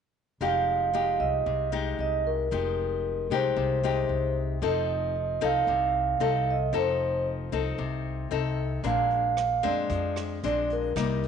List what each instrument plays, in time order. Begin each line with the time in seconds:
0.41 upright bass F1, nylon-string guitar F3 G#3 D#4 G4, vibraphone F5
0.93 nylon-string guitar G#3 D#4 G4
1.20 upright bass C2, vibraphone D#5
1.46 upright bass C2, nylon-string guitar C3
1.72 nylon-string guitar G#3 D#4 G4
1.99 upright bass C2, vibraphone D#5
2.27 vibraphone A#4
2.51 upright bass F1, nylon-string guitar F3 G#3 D#4 G4
3.30 upright bass C2, nylon-string guitar G#3 D#4 G4, vibraphone C5
3.56 upright bass C2, nylon-string guitar C3
3.83 nylon-string guitar G#3 D#4 G4
4.09 upright bass C2
4.62 upright bass F1, nylon-string guitar F3 C4 D#4 A4, vibraphone D#5
5.41 upright bass C2, nylon-string guitar C4 D#4 A4, vibraphone F5
5.67 upright bass C2, nylon-string guitar C3
6.20 upright bass C2, nylon-string guitar C4 D#4 A4
6.50 vibraphone D#5
6.73 upright bass F1, nylon-string guitar F3 C4 D#4 A4
6.78 vibraphone C5
7.52 upright bass C2, nylon-string guitar C4 D#4 A4
7.78 upright bass C2, nylon-string guitar C3
8.31 upright bass C2, nylon-string guitar C4 D#4 A4
8.84 upright bass A#1, nylon-string guitar A#2 G#3 C4 D4, vibraphone F5, kick, closed hi-hat
9.10 closed hi-hat
9.37 cross-stick, closed hi-hat
9.63 upright bass F2, nylon-string guitar G#3 C4 D4, vibraphone D5, closed hi-hat
9.90 upright bass F2, nylon-string guitar F3, kick, closed hi-hat
10.16 cross-stick, closed hi-hat
10.43 upright bass A#1, nylon-string guitar G#3 C4 D4, vibraphone D5, closed hi-hat
10.70 vibraphone A#4, closed hi-hat
10.96 upright bass C2, nylon-string guitar C3 G3 A#3 D#4, kick, cross-stick, closed hi-hat
11.23 closed hi-hat